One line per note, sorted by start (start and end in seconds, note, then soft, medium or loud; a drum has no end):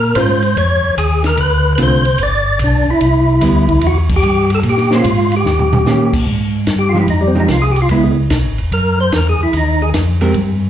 0.00 0.15 A#2 medium
0.00 0.18 A#4 loud
0.15 0.55 G#2 medium
0.15 0.40 G#3 medium
0.15 0.41 C#4 medium
0.15 0.41 F4 medium
0.15 0.58 C5 loud
0.15 kick soft
0.15 hi-hat pedal soft
0.15 ride medium
0.42 ride soft
0.57 0.82 F2 medium
0.57 0.95 C#5 loud
0.57 kick soft
0.57 ride medium
0.84 0.91 F2 soft
0.97 1.37 D#2 medium
0.97 1.23 G#4 medium
0.97 kick soft
0.97 hi-hat pedal medium
0.97 ride medium
1.24 1.39 A#4 medium
1.24 snare soft
1.24 ride medium
1.37 1.78 D2 medium
1.37 1.73 B4 loud
1.37 kick soft
1.37 ride medium
1.75 2.18 C2 medium
1.75 2.03 D3 medium
1.75 2.03 A3 medium
1.75 2.03 C4 medium
1.75 2.03 F4 medium
1.75 1.80 B4 medium
1.75 kick soft
1.75 hi-hat pedal medium
1.75 ride medium
1.83 2.23 C5 loud
2.05 ride medium
2.18 2.59 G1 medium
2.18 kick soft
2.18 ride medium
2.23 2.59 D5 medium
2.59 2.85 B1 medium
2.59 kick soft
2.59 hi-hat pedal medium
2.59 ride medium
2.64 2.90 D4 medium
2.87 2.94 B1 soft
2.87 3.87 E4 medium
3.01 3.41 C2 medium
3.01 kick soft
3.01 ride medium
3.41 3.81 D2 loud
3.41 3.66 G3 medium
3.41 3.67 B3 soft
3.41 3.67 E4 medium
3.41 kick soft
3.41 hi-hat pedal soft
3.41 ride medium
3.69 kick medium
3.69 ride medium
3.81 4.22 E2 medium
3.81 kick soft
3.81 ride medium
3.87 3.98 F#4 medium
4.09 kick medium
4.09 crash medium
4.16 4.51 G4 loud
4.22 4.63 G2 medium
4.22 hi-hat pedal medium
4.50 ride medium
4.54 4.60 A4 medium
4.63 5.04 A#2 medium
4.63 kick soft
4.63 ride medium
4.69 4.95 G4 medium
4.77 snare soft
4.91 5.04 A#3 medium
4.91 5.04 C#4 medium
4.91 5.04 G#4 medium
4.91 5.04 C5 medium
4.91 snare soft
4.95 5.35 F4 loud
5.04 5.44 G#2 loud
5.04 kick soft
5.04 hi-hat pedal medium
5.04 ride medium
5.32 ride soft
5.37 6.12 G4 medium
5.46 5.85 D#2 medium
5.46 snare soft
5.59 floor tom medium
5.73 floor tom medium
5.86 6.26 A#2 medium
5.86 6.11 D#3 medium
5.86 6.11 A#3 medium
5.86 6.11 C#4 medium
5.86 6.12 G4 medium
5.86 snare medium
5.86 hi-hat pedal medium
6.13 kick medium
6.13 crash medium
6.26 6.66 G#2 medium
6.26 kick soft
6.67 7.07 G2 medium
6.67 kick soft
6.67 snare medium
6.67 hi-hat pedal soft
6.67 ride medium
6.79 6.93 G4 medium
6.89 6.99 F4 medium
6.94 7.07 F3 medium
6.94 7.08 G#3 medium
6.94 7.07 D#4 medium
6.94 7.08 G4 medium
7.00 7.08 E4 medium
7.08 7.48 F2 medium
7.08 7.23 D#4 medium
7.08 kick soft
7.08 ride soft
7.21 7.35 G3 medium
7.28 7.38 C4 medium
7.35 7.48 F3 medium
7.35 7.48 G#3 medium
7.35 7.48 D#4 medium
7.35 7.48 G4 medium
7.40 7.48 D#4 medium
7.48 7.89 C2 medium
7.48 7.64 F4 medium
7.48 kick soft
7.48 snare medium
7.48 hi-hat pedal medium
7.48 ride medium
7.62 7.76 G#4 medium
7.72 7.81 G4 medium
7.76 ride soft
7.82 7.89 F4 medium
7.89 8.30 C#2 medium
7.89 8.15 G#3 medium
7.89 8.16 B3 medium
7.89 8.04 E4 medium
7.89 8.16 E4 medium
7.89 kick soft
7.89 ride medium
8.03 8.12 G#3 medium
8.30 8.44 B1 loud
8.30 kick soft
8.30 snare medium
8.30 hi-hat pedal medium
8.30 ride medium
8.45 8.59 G#1 medium
8.58 8.71 E1 medium
8.58 ride soft
8.72 9.11 F#2 medium
8.72 8.99 A#4 medium
8.72 kick soft
8.72 ride medium
9.00 9.13 C5 medium
9.12 9.38 E2 medium
9.12 9.27 A#4 medium
9.12 kick soft
9.12 snare medium
9.12 hi-hat pedal soft
9.12 ride medium
9.29 9.41 G#4 medium
9.40 9.47 E2 soft
9.40 9.55 E4 medium
9.53 9.93 D#2 medium
9.53 kick soft
9.53 ride medium
9.57 9.82 D#4 medium
9.82 9.90 G#4 medium
9.94 10.33 F2 medium
9.94 kick soft
9.94 snare medium
9.94 hi-hat pedal medium
9.94 ride medium
10.21 10.34 G#3 medium
10.21 10.34 C4 medium
10.21 10.34 G4 medium
10.21 10.34 A#4 medium
10.21 ride soft
10.34 10.70 G2 medium
10.34 kick soft
10.34 ride medium